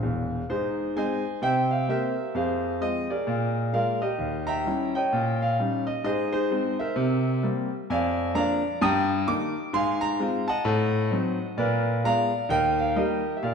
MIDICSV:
0, 0, Header, 1, 2, 480
1, 0, Start_track
1, 0, Key_signature, -4, "major"
1, 0, Tempo, 461538
1, 516, Time_signature, 4, 2, 24, 8
1, 8199, Key_signature, -3, "major"
1, 14083, End_track
2, 0, Start_track
2, 0, Title_t, "Grand piano"
2, 0, Program_c, 0, 0
2, 29, Note_on_c, 0, 40, 61
2, 30, Note_on_c, 0, 28, 59
2, 416, Note_off_c, 0, 40, 0
2, 417, Note_off_c, 0, 28, 0
2, 514, Note_on_c, 0, 44, 69
2, 517, Note_on_c, 0, 72, 78
2, 530, Note_on_c, 0, 63, 58
2, 531, Note_on_c, 0, 68, 61
2, 728, Control_c, 0, 64, 127
2, 924, Note_off_c, 0, 44, 0
2, 971, Note_off_c, 0, 63, 0
2, 972, Note_off_c, 0, 68, 0
2, 998, Note_off_c, 0, 72, 0
2, 1000, Note_on_c, 0, 56, 49
2, 1003, Note_on_c, 0, 60, 48
2, 1005, Control_c, 0, 64, 0
2, 1005, Note_on_c, 0, 80, 93
2, 1007, Note_on_c, 0, 63, 54
2, 1016, Note_on_c, 0, 72, 74
2, 1018, Note_on_c, 0, 75, 72
2, 1264, Note_off_c, 0, 56, 0
2, 1266, Note_off_c, 0, 60, 0
2, 1269, Note_off_c, 0, 63, 0
2, 1455, Note_off_c, 0, 72, 0
2, 1455, Note_off_c, 0, 75, 0
2, 1475, Note_on_c, 0, 48, 80
2, 1482, Note_off_c, 0, 80, 0
2, 1484, Note_on_c, 0, 79, 99
2, 1491, Note_on_c, 0, 72, 70
2, 1493, Note_on_c, 0, 76, 77
2, 1700, Control_c, 0, 64, 127
2, 1757, Note_off_c, 0, 72, 0
2, 1758, Note_off_c, 0, 76, 0
2, 1774, Note_off_c, 0, 79, 0
2, 1776, Note_on_c, 0, 77, 80
2, 1885, Note_off_c, 0, 48, 0
2, 1960, Note_on_c, 0, 58, 48
2, 1962, Note_off_c, 0, 77, 0
2, 1967, Note_on_c, 0, 60, 47
2, 1971, Note_on_c, 0, 67, 46
2, 1972, Control_c, 0, 64, 0
2, 1972, Note_on_c, 0, 76, 87
2, 1979, Note_on_c, 0, 72, 60
2, 1982, Note_on_c, 0, 70, 62
2, 2224, Note_off_c, 0, 58, 0
2, 2229, Note_off_c, 0, 60, 0
2, 2232, Note_off_c, 0, 67, 0
2, 2417, Note_off_c, 0, 72, 0
2, 2418, Note_off_c, 0, 70, 0
2, 2439, Note_on_c, 0, 41, 73
2, 2446, Note_off_c, 0, 76, 0
2, 2449, Note_on_c, 0, 77, 72
2, 2461, Note_on_c, 0, 68, 63
2, 2461, Note_on_c, 0, 72, 61
2, 2647, Control_c, 0, 64, 127
2, 2848, Note_off_c, 0, 41, 0
2, 2898, Note_off_c, 0, 68, 0
2, 2898, Note_off_c, 0, 72, 0
2, 2921, Note_on_c, 0, 60, 45
2, 2924, Note_on_c, 0, 56, 46
2, 2925, Note_off_c, 0, 77, 0
2, 2928, Note_on_c, 0, 65, 50
2, 2930, Note_on_c, 0, 75, 101
2, 2932, Control_c, 0, 64, 0
2, 3185, Note_off_c, 0, 60, 0
2, 3187, Note_off_c, 0, 56, 0
2, 3190, Note_off_c, 0, 65, 0
2, 3218, Note_off_c, 0, 75, 0
2, 3228, Note_on_c, 0, 74, 80
2, 3238, Note_on_c, 0, 68, 60
2, 3241, Note_on_c, 0, 70, 58
2, 3400, Note_on_c, 0, 46, 86
2, 3584, Control_c, 0, 64, 127
2, 3809, Note_off_c, 0, 46, 0
2, 3852, Note_off_c, 0, 68, 0
2, 3854, Note_off_c, 0, 70, 0
2, 3878, Note_on_c, 0, 56, 39
2, 3880, Note_off_c, 0, 74, 0
2, 3883, Note_on_c, 0, 58, 44
2, 3886, Note_on_c, 0, 77, 89
2, 3890, Note_on_c, 0, 65, 49
2, 3891, Control_c, 0, 64, 0
2, 3896, Note_on_c, 0, 74, 65
2, 3898, Note_on_c, 0, 70, 74
2, 4143, Note_off_c, 0, 56, 0
2, 4146, Note_off_c, 0, 58, 0
2, 4152, Note_off_c, 0, 65, 0
2, 4161, Note_off_c, 0, 74, 0
2, 4162, Note_off_c, 0, 70, 0
2, 4176, Note_off_c, 0, 77, 0
2, 4178, Note_on_c, 0, 75, 85
2, 4185, Note_on_c, 0, 70, 59
2, 4189, Note_on_c, 0, 67, 64
2, 4354, Note_on_c, 0, 39, 67
2, 4587, Control_c, 0, 64, 127
2, 4626, Note_off_c, 0, 70, 0
2, 4628, Note_off_c, 0, 67, 0
2, 4646, Note_on_c, 0, 82, 98
2, 4656, Note_off_c, 0, 75, 0
2, 4660, Note_on_c, 0, 79, 76
2, 4661, Note_on_c, 0, 76, 83
2, 4765, Note_off_c, 0, 39, 0
2, 4849, Note_on_c, 0, 55, 51
2, 4853, Control_c, 0, 64, 0
2, 4855, Note_on_c, 0, 61, 52
2, 4858, Note_on_c, 0, 64, 55
2, 5103, Note_off_c, 0, 79, 0
2, 5104, Note_off_c, 0, 76, 0
2, 5111, Note_off_c, 0, 55, 0
2, 5115, Note_off_c, 0, 61, 0
2, 5117, Note_off_c, 0, 64, 0
2, 5130, Note_off_c, 0, 82, 0
2, 5149, Note_on_c, 0, 79, 87
2, 5164, Note_on_c, 0, 75, 68
2, 5165, Note_on_c, 0, 73, 57
2, 5332, Note_on_c, 0, 46, 86
2, 5554, Control_c, 0, 64, 127
2, 5596, Note_off_c, 0, 75, 0
2, 5597, Note_off_c, 0, 73, 0
2, 5622, Note_off_c, 0, 79, 0
2, 5639, Note_on_c, 0, 77, 91
2, 5736, Note_off_c, 0, 46, 0
2, 5810, Control_c, 0, 64, 0
2, 5818, Note_on_c, 0, 61, 51
2, 5820, Note_on_c, 0, 55, 51
2, 5829, Note_on_c, 0, 63, 49
2, 6077, Note_off_c, 0, 61, 0
2, 6078, Note_off_c, 0, 55, 0
2, 6085, Note_off_c, 0, 63, 0
2, 6102, Note_on_c, 0, 75, 82
2, 6106, Note_off_c, 0, 77, 0
2, 6272, Note_off_c, 0, 75, 0
2, 6282, Note_on_c, 0, 44, 72
2, 6287, Note_on_c, 0, 75, 98
2, 6304, Note_on_c, 0, 72, 73
2, 6305, Note_on_c, 0, 68, 73
2, 6497, Control_c, 0, 64, 127
2, 6562, Note_off_c, 0, 72, 0
2, 6566, Note_off_c, 0, 68, 0
2, 6576, Note_off_c, 0, 75, 0
2, 6578, Note_on_c, 0, 72, 98
2, 6589, Note_on_c, 0, 68, 68
2, 6590, Note_on_c, 0, 63, 64
2, 6690, Note_off_c, 0, 44, 0
2, 6763, Note_off_c, 0, 63, 0
2, 6767, Note_on_c, 0, 56, 56
2, 6771, Note_on_c, 0, 60, 63
2, 6776, Control_c, 0, 64, 0
2, 6778, Note_on_c, 0, 63, 66
2, 7028, Note_off_c, 0, 68, 0
2, 7029, Note_off_c, 0, 56, 0
2, 7032, Note_off_c, 0, 60, 0
2, 7037, Note_off_c, 0, 63, 0
2, 7055, Note_off_c, 0, 72, 0
2, 7066, Note_on_c, 0, 76, 84
2, 7079, Note_on_c, 0, 70, 67
2, 7081, Note_on_c, 0, 72, 59
2, 7236, Note_on_c, 0, 48, 102
2, 7457, Control_c, 0, 64, 127
2, 7513, Note_off_c, 0, 70, 0
2, 7514, Note_off_c, 0, 72, 0
2, 7539, Note_off_c, 0, 76, 0
2, 7646, Note_off_c, 0, 48, 0
2, 7728, Note_on_c, 0, 55, 57
2, 7730, Note_on_c, 0, 58, 51
2, 7735, Control_c, 0, 64, 0
2, 7736, Note_on_c, 0, 60, 52
2, 7989, Note_off_c, 0, 55, 0
2, 7991, Note_off_c, 0, 58, 0
2, 7995, Note_off_c, 0, 60, 0
2, 8215, Note_on_c, 0, 41, 89
2, 8221, Note_on_c, 0, 80, 102
2, 8231, Note_on_c, 0, 74, 79
2, 8235, Note_on_c, 0, 77, 85
2, 8389, Control_c, 0, 64, 127
2, 8616, Note_off_c, 0, 41, 0
2, 8662, Note_off_c, 0, 74, 0
2, 8664, Note_off_c, 0, 77, 0
2, 8678, Note_on_c, 0, 53, 57
2, 8685, Note_on_c, 0, 58, 60
2, 8686, Note_on_c, 0, 62, 73
2, 8686, Note_on_c, 0, 82, 111
2, 8690, Note_off_c, 0, 80, 0
2, 8694, Control_c, 0, 64, 0
2, 8697, Note_on_c, 0, 74, 90
2, 8699, Note_on_c, 0, 77, 84
2, 8942, Note_off_c, 0, 53, 0
2, 8947, Note_off_c, 0, 58, 0
2, 8948, Note_off_c, 0, 62, 0
2, 9135, Note_off_c, 0, 74, 0
2, 9135, Note_off_c, 0, 77, 0
2, 9162, Note_off_c, 0, 82, 0
2, 9167, Note_on_c, 0, 43, 116
2, 9174, Note_on_c, 0, 87, 127
2, 9182, Note_on_c, 0, 82, 91
2, 9185, Note_on_c, 0, 79, 102
2, 9381, Control_c, 0, 64, 127
2, 9571, Note_off_c, 0, 43, 0
2, 9617, Note_off_c, 0, 82, 0
2, 9618, Note_off_c, 0, 79, 0
2, 9642, Note_on_c, 0, 51, 60
2, 9645, Note_off_c, 0, 87, 0
2, 9646, Note_on_c, 0, 58, 56
2, 9646, Note_on_c, 0, 63, 63
2, 9649, Note_on_c, 0, 86, 125
2, 9650, Control_c, 0, 64, 0
2, 9905, Note_off_c, 0, 51, 0
2, 9907, Note_off_c, 0, 58, 0
2, 9907, Note_off_c, 0, 63, 0
2, 10121, Note_on_c, 0, 44, 92
2, 10123, Note_off_c, 0, 86, 0
2, 10129, Note_on_c, 0, 84, 120
2, 10143, Note_on_c, 0, 77, 86
2, 10147, Note_on_c, 0, 80, 98
2, 10298, Control_c, 0, 64, 127
2, 10402, Note_off_c, 0, 77, 0
2, 10404, Note_off_c, 0, 80, 0
2, 10411, Note_on_c, 0, 82, 116
2, 10415, Note_off_c, 0, 84, 0
2, 10527, Note_off_c, 0, 44, 0
2, 10602, Note_on_c, 0, 56, 61
2, 10607, Control_c, 0, 64, 0
2, 10609, Note_on_c, 0, 60, 59
2, 10614, Note_on_c, 0, 65, 71
2, 10864, Note_off_c, 0, 56, 0
2, 10869, Note_off_c, 0, 60, 0
2, 10872, Note_off_c, 0, 65, 0
2, 10889, Note_off_c, 0, 82, 0
2, 10896, Note_on_c, 0, 81, 103
2, 10912, Note_on_c, 0, 78, 88
2, 10914, Note_on_c, 0, 75, 85
2, 11074, Note_on_c, 0, 45, 116
2, 11254, Control_c, 0, 64, 127
2, 11482, Note_off_c, 0, 45, 0
2, 11555, Note_on_c, 0, 54, 62
2, 11562, Note_on_c, 0, 60, 61
2, 11563, Note_on_c, 0, 63, 59
2, 11569, Control_c, 0, 64, 0
2, 11819, Note_off_c, 0, 54, 0
2, 11824, Note_off_c, 0, 60, 0
2, 11825, Note_off_c, 0, 63, 0
2, 12005, Note_off_c, 0, 78, 0
2, 12006, Note_off_c, 0, 75, 0
2, 12038, Note_off_c, 0, 81, 0
2, 12039, Note_on_c, 0, 46, 90
2, 12041, Note_on_c, 0, 74, 92
2, 12057, Note_on_c, 0, 71, 79
2, 12059, Note_on_c, 0, 70, 77
2, 12227, Control_c, 0, 64, 127
2, 12444, Note_off_c, 0, 46, 0
2, 12492, Note_off_c, 0, 71, 0
2, 12494, Note_off_c, 0, 70, 0
2, 12517, Note_off_c, 0, 74, 0
2, 12520, Note_on_c, 0, 56, 53
2, 12525, Note_on_c, 0, 59, 55
2, 12527, Control_c, 0, 64, 0
2, 12533, Note_on_c, 0, 65, 61
2, 12535, Note_on_c, 0, 82, 121
2, 12544, Note_on_c, 0, 77, 88
2, 12547, Note_on_c, 0, 74, 89
2, 12782, Note_off_c, 0, 56, 0
2, 12786, Note_off_c, 0, 59, 0
2, 12791, Note_off_c, 0, 65, 0
2, 12976, Note_off_c, 0, 77, 0
2, 12977, Note_off_c, 0, 74, 0
2, 12992, Note_on_c, 0, 39, 90
2, 13003, Note_on_c, 0, 79, 117
2, 13004, Note_off_c, 0, 82, 0
2, 13011, Note_on_c, 0, 70, 86
2, 13011, Note_on_c, 0, 75, 84
2, 13177, Control_c, 0, 64, 127
2, 13274, Note_off_c, 0, 70, 0
2, 13274, Note_off_c, 0, 75, 0
2, 13290, Note_off_c, 0, 79, 0
2, 13303, Note_on_c, 0, 77, 88
2, 13400, Note_off_c, 0, 39, 0
2, 13477, Note_on_c, 0, 55, 53
2, 13481, Control_c, 0, 64, 0
2, 13482, Note_off_c, 0, 77, 0
2, 13483, Note_on_c, 0, 58, 48
2, 13484, Note_on_c, 0, 75, 83
2, 13489, Note_on_c, 0, 63, 57
2, 13500, Note_on_c, 0, 70, 73
2, 13502, Note_on_c, 0, 67, 72
2, 13740, Note_off_c, 0, 55, 0
2, 13744, Note_off_c, 0, 58, 0
2, 13748, Note_off_c, 0, 63, 0
2, 13881, Note_off_c, 0, 70, 0
2, 13882, Note_off_c, 0, 67, 0
2, 13901, Note_off_c, 0, 75, 0
2, 13902, Note_on_c, 0, 76, 64
2, 13956, Note_off_c, 0, 76, 0
2, 13965, Note_on_c, 0, 46, 80
2, 13965, Note_on_c, 0, 77, 76
2, 13979, Note_on_c, 0, 74, 63
2, 13984, Note_on_c, 0, 70, 58
2, 14083, Note_off_c, 0, 46, 0
2, 14083, Note_off_c, 0, 70, 0
2, 14083, Note_off_c, 0, 74, 0
2, 14083, Note_off_c, 0, 77, 0
2, 14083, End_track
0, 0, End_of_file